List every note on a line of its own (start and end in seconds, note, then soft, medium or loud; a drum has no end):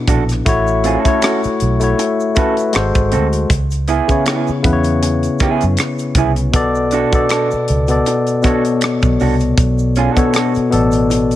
0.00 0.48 B2 medium
0.00 0.48 B3 medium
0.00 0.48 D4 medium
0.00 0.46 E4 medium
0.00 0.48 B4 medium
0.08 0.40 A#1 medium
0.08 0.22 D4 medium
0.08 0.23 F#4 medium
0.08 0.23 A4 medium
0.08 kick medium
0.08 closed hi-hat medium
0.08 shaker soft
0.29 cross-stick soft
0.29 closed hi-hat soft
0.29 shaker soft
0.45 0.96 A1 loud
0.45 0.96 A3 loud
0.45 0.96 E4 loud
0.45 0.97 F#4 loud
0.45 0.97 C#5 loud
0.45 kick loud
0.45 closed hi-hat medium
0.45 shaker medium
0.67 shaker soft
0.84 0.99 C4 medium
0.84 0.99 F4 medium
0.84 1.00 G#4 medium
0.84 closed hi-hat medium
0.84 shaker soft
0.99 1.19 C#4 medium
0.99 1.20 F#4 medium
0.99 1.20 A4 medium
1.04 1.68 A3 medium
1.04 1.69 E4 medium
1.04 1.69 F#4 medium
1.04 1.70 C#5 medium
1.04 kick medium
1.04 closed hi-hat soft
1.04 shaker soft
1.22 1.40 C#4 medium
1.22 1.41 F#4 medium
1.22 1.41 A4 medium
1.22 finger snap medium
1.22 cross-stick medium
1.22 closed hi-hat medium
1.22 shaker medium
1.43 muted fingered electric bass stroke soft
1.43 closed hi-hat soft
1.43 shaker soft
1.60 1.93 B1 medium
1.60 closed hi-hat medium
1.80 2.28 A3 medium
1.80 2.29 E4 medium
1.80 2.29 F#4 medium
1.80 2.30 C#5 medium
1.80 closed hi-hat soft
1.80 shaker soft
1.98 muted clean electric guitar stroke soft
1.98 closed hi-hat medium
1.98 shaker medium
2.20 shaker soft
2.35 2.73 A3 medium
2.35 2.54 C#4 loud
2.35 2.74 E4 medium
2.35 2.55 F#4 medium
2.35 2.73 F#4 medium
2.35 2.55 A4 medium
2.35 2.75 B4 medium
2.35 kick medium
2.35 closed hi-hat medium
2.35 shaker soft
2.57 closed hi-hat soft
2.57 shaker soft
2.73 2.93 G#1 loud
2.73 3.39 G#3 medium
2.73 3.40 F#4 medium
2.73 3.41 A4 medium
2.73 3.41 C5 loud
2.73 finger snap medium
2.73 cross-stick loud
2.73 closed hi-hat medium
2.73 shaker medium
2.95 3.15 G#1 medium
2.95 kick loud
2.95 closed hi-hat soft
2.95 shaker soft
3.12 3.44 D2 medium
3.12 3.26 C4 medium
3.12 3.26 F#4 medium
3.12 3.27 A4 medium
3.12 closed hi-hat medium
3.12 shaker soft
3.33 closed hi-hat soft
3.33 shaker soft
3.50 3.99 C#2 medium
3.50 kick loud
3.50 closed hi-hat medium
3.50 shaker medium
3.71 closed hi-hat soft
3.71 shaker soft
3.88 4.23 B3 medium
3.88 4.24 E4 medium
3.88 4.24 G#4 medium
3.88 closed hi-hat medium
3.88 shaker soft
4.08 4.56 C#3 medium
4.08 4.56 B3 medium
4.08 4.57 E4 medium
4.08 4.58 C#5 medium
4.08 kick medium
4.08 closed hi-hat soft
4.08 shaker soft
4.26 4.48 B3 medium
4.26 4.49 E4 medium
4.26 4.49 G#4 medium
4.26 finger snap medium
4.26 cross-stick medium
4.26 closed hi-hat medium
4.26 shaker medium
4.47 muted fingered electric bass stroke soft
4.47 shaker soft
4.62 5.27 E2 medium
4.62 5.94 C#3 medium
4.62 5.95 B3 medium
4.62 5.96 E4 medium
4.62 4.72 B4 medium
4.62 kick medium
4.62 closed hi-hat medium
4.73 6.00 C#5 medium
4.84 closed hi-hat soft
4.84 shaker soft
5.02 muted clean electric guitar stroke soft
5.02 closed hi-hat medium
5.02 shaker medium
5.23 closed hi-hat soft
5.23 shaker soft
5.39 5.62 B3 medium
5.39 5.63 E4 medium
5.39 5.63 G#4 loud
5.39 muted fingered electric bass stroke soft
5.39 kick medium
5.39 cross-stick soft
5.39 closed hi-hat soft
5.39 shaker soft
5.61 5.76 F#2 medium
5.61 closed hi-hat soft
5.61 shaker soft
5.77 finger snap medium
5.77 cross-stick medium
5.77 closed hi-hat medium
5.77 shaker medium
5.99 closed hi-hat soft
5.99 shaker soft
6.15 6.55 C2 medium
6.15 6.31 B3 medium
6.15 6.31 E4 medium
6.15 6.31 G#4 medium
6.15 kick medium
6.15 closed hi-hat medium
6.15 shaker soft
6.36 closed hi-hat soft
6.36 shaker soft
6.52 7.03 B1 loud
6.52 7.03 B2 loud
6.52 7.03 B3 medium
6.52 7.04 A4 medium
6.52 7.05 D5 loud
6.52 kick loud
6.52 closed hi-hat medium
6.52 shaker medium
6.75 shaker soft
6.91 7.27 D4 medium
6.91 7.28 F#4 medium
6.91 7.28 A4 medium
6.91 closed hi-hat medium
6.91 shaker soft
7.12 7.76 B2 medium
7.12 7.76 B3 medium
7.12 7.77 A4 medium
7.12 7.78 D5 medium
7.12 kick medium
7.12 closed hi-hat soft
7.12 shaker soft
7.29 7.48 D4 medium
7.29 7.48 F#4 medium
7.29 7.49 A4 medium
7.29 finger snap medium
7.29 cross-stick medium
7.29 closed hi-hat medium
7.29 shaker medium
7.51 muted fingered electric bass stroke soft
7.51 shaker soft
7.68 8.00 C#2 medium
7.68 closed hi-hat medium
7.88 8.36 B2 medium
7.88 8.36 B3 medium
7.88 8.37 A4 medium
7.88 8.37 D5 medium
7.88 closed hi-hat soft
7.88 shaker soft
8.06 muted clean electric guitar stroke soft
8.06 closed hi-hat medium
8.06 shaker medium
8.27 closed hi-hat soft
8.27 shaker soft
8.42 9.74 B2 medium
8.42 9.75 B3 medium
8.42 8.62 D4 medium
8.42 8.63 F#4 medium
8.42 9.75 A4 medium
8.42 8.63 A4 loud
8.42 9.76 C#5 medium
8.42 kick medium
8.42 cross-stick soft
8.42 closed hi-hat medium
8.42 shaker soft
8.65 closed hi-hat soft
8.65 shaker soft
8.81 finger snap medium
8.81 cross-stick loud
8.81 closed hi-hat medium
8.81 shaker medium
9.02 9.17 B1 medium
9.02 kick loud
9.02 shaker soft
9.20 9.52 C2 medium
9.20 9.34 D4 medium
9.20 9.35 F#4 medium
9.20 9.35 A4 medium
9.20 open hi-hat soft
9.20 shaker soft
9.40 closed hi-hat soft
9.40 shaker soft
9.58 10.07 B1 loud
9.58 kick loud
9.58 closed hi-hat medium
9.58 shaker medium
9.78 shaker soft
9.96 10.11 C#4 medium
9.96 10.12 F4 medium
9.96 10.13 G#4 medium
9.96 closed hi-hat medium
9.96 shaker soft
10.11 10.32 D4 medium
10.11 10.32 F#4 medium
10.11 10.32 A4 medium
10.15 10.63 B2 medium
10.15 10.64 B3 medium
10.15 10.65 A4 medium
10.15 10.65 C#5 medium
10.15 kick medium
10.15 closed hi-hat soft
10.15 shaker soft
10.34 10.52 D4 medium
10.34 10.52 F#4 medium
10.34 10.53 A4 medium
10.34 finger snap medium
10.34 cross-stick medium
10.34 closed hi-hat medium
10.34 shaker medium
10.55 muted fingered electric bass stroke soft
10.55 closed hi-hat soft
10.55 shaker soft
10.70 11.35 A1 medium
10.70 11.36 B2 medium
10.70 11.36 B3 medium
10.70 11.36 A4 medium
10.70 11.36 D5 medium
10.70 closed hi-hat medium
10.92 closed hi-hat soft
10.92 shaker soft
11.10 muted clean electric guitar stroke soft
11.10 closed hi-hat medium
11.10 shaker medium
11.31 closed hi-hat soft
11.31 shaker soft